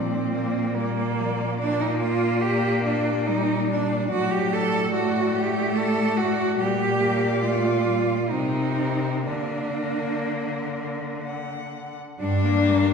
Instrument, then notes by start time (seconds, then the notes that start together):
cello
Already playing: A#2 F3 C4 D5
0.11 D5
0.33 A#3 D5
0.53 D5
0.74 G3 A#3 D5
0.95 D5
1.18 F3 D5
1.38 D5
1.59 A#3 D4 D5
1.80 D#4 D5
1.99 F4 D5
2.19 D5
2.40 G4 D5
2.62 D5
2.82 D4 D5
3.05 D5
3.25 G3 D#4 D5
3.47 D5
3.67 D4 D5
3.87 D5
4.09 A2 F#3 F#4 D5
4.30 G4 D5
4.51 A4 D5
4.72 D5
4.91 A3 F#4 D5
5.14 D5
5.33 G4 D5
5.54 D5
5.75 A4 D5
5.94 D5
6.14 F#4 D5
6.35 D5
6.58 A#2 G3 G4 D5
7.00 A#3
7.42 A3 F4
7.87 G3
8.30 C3 C4 D#4 A#4
9.26 D3 A#3 D4 A#4
11.25 F#5
12.19 G2 G3 D4
12.44 A#3
12.67 G3 A#3